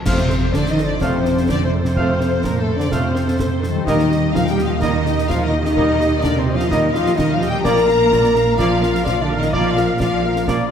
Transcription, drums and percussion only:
0.06 concert bass drum medium
0.06 snare medium
0.06 crash soft
0.06 crash medium
0.18 snare soft
0.30 snare soft
0.54 concert bass drum medium
0.54 snare medium
0.66 snare medium
0.78 snare medium
1.01 concert bass drum medium
1.01 snare medium
1.25 snare medium
1.37 snare medium
1.49 concert bass drum medium
1.49 snare medium
1.85 snare medium
1.96 concert bass drum medium
2.21 snare soft
2.44 concert bass drum medium
2.44 snare medium
2.80 snare soft
2.92 concert bass drum medium
2.92 snare medium
3.16 snare medium
3.28 snare medium
3.39 concert bass drum medium
3.39 snare medium
3.63 snare medium
3.87 concert bass drum medium
3.87 snare medium
3.99 snare medium
4.12 snare soft
4.35 concert bass drum medium
4.35 snare medium
4.47 snare medium
4.58 snare medium
4.82 concert bass drum medium
4.82 snare medium
5.06 snare medium
5.18 snare medium
5.30 concert bass drum medium
5.30 snare medium
5.65 snare medium
5.77 concert bass drum medium
6.01 snare soft
6.24 concert bass drum medium
6.24 snare medium
6.60 snare medium
6.71 concert bass drum medium
6.71 snare medium
6.95 snare medium
7.06 snare medium
7.19 concert bass drum medium
7.19 snare medium
7.42 snare medium
7.65 concert bass drum medium
7.65 snare medium
7.65 crash soft
7.76 snare medium
7.89 snare medium
8.12 concert bass drum medium
8.12 snare medium
8.24 snare medium
8.35 snare medium
8.59 concert bass drum medium
8.59 snare medium
8.83 snare medium
8.95 snare medium
9.06 concert bass drum medium
9.06 snare medium
9.42 snare medium
9.54 concert bass drum medium
9.77 snare soft
10.00 concert bass drum medium
10.00 snare medium
10.36 snare medium
10.48 concert bass drum medium
10.48 snare medium

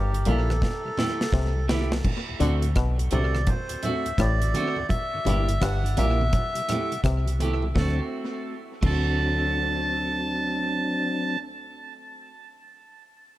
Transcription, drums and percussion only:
0.14 closed hi-hat soft
0.25 closed hi-hat medium
0.25 high conga medium
0.25 low conga medium
0.50 cross-stick medium
0.50 high conga medium
0.62 kick loud
0.62 snare medium
0.62 low conga medium
0.97 snare medium
0.97 high conga soft
0.97 low conga medium
1.21 snare medium
1.33 kick loud
1.33 snare medium
1.69 snare medium
1.69 high conga medium
1.91 snare medium
1.91 high conga medium
2.04 kick loud
2.04 crash medium
2.04 low conga medium
2.40 closed hi-hat medium
2.40 low conga medium
2.62 closed hi-hat medium
2.75 kick loud
2.75 cross-stick loud
2.75 closed hi-hat medium
2.75 high conga medium
2.99 closed hi-hat medium
3.11 closed hi-hat medium
3.11 high conga medium
3.11 low conga medium
3.35 cross-stick medium
3.35 high conga medium
3.47 kick loud
3.47 closed hi-hat medium
3.47 low conga medium
3.69 closed hi-hat medium
3.83 closed hi-hat medium
3.83 low conga medium
4.06 closed hi-hat soft
4.18 kick loud
4.18 cross-stick loud
4.18 closed hi-hat medium
4.42 closed hi-hat medium
4.54 closed hi-hat medium
4.54 high conga medium
4.76 high conga medium
4.89 kick medium
4.89 closed hi-hat medium
4.89 low conga medium
5.25 closed hi-hat medium
5.25 low conga medium
5.49 closed hi-hat medium
5.60 kick loud
5.60 cross-stick loud
5.60 closed hi-hat medium
5.60 high conga medium
5.86 closed hi-hat soft
5.97 closed hi-hat medium
5.97 high conga medium
5.97 low conga medium
6.21 high conga medium
6.33 kick loud
6.33 closed hi-hat medium
6.33 low conga medium
6.55 closed hi-hat medium
6.69 cross-stick medium
6.69 closed hi-hat medium
6.69 low conga medium
6.92 closed hi-hat soft
7.04 kick loud
7.04 cross-stick loud
7.04 closed hi-hat medium
7.28 closed hi-hat medium
7.40 closed hi-hat medium
7.40 high conga medium
7.62 high conga medium
7.75 kick loud
7.75 snare medium
7.75 low conga medium
8.82 kick loud
8.82 crash medium
8.82 low conga medium

